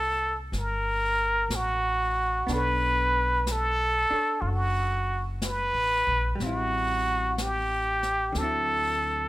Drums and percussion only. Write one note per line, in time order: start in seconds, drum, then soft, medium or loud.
0.53 brush sweep soft
0.53 snare soft
1.50 brush sweep soft
1.50 snare soft
1.50 hi-hat pedal soft
2.48 brush sweep soft
2.48 snare soft
3.47 brush sweep soft
3.47 snare soft
3.47 hi-hat pedal medium
4.45 brush sweep soft
5.42 brush sweep soft
5.42 snare soft
5.42 hi-hat pedal soft
6.40 brush sweep soft
6.40 snare soft
7.38 brush sweep soft
7.38 snare soft
7.38 hi-hat pedal medium
8.03 snare soft
8.35 brush sweep soft
8.35 snare soft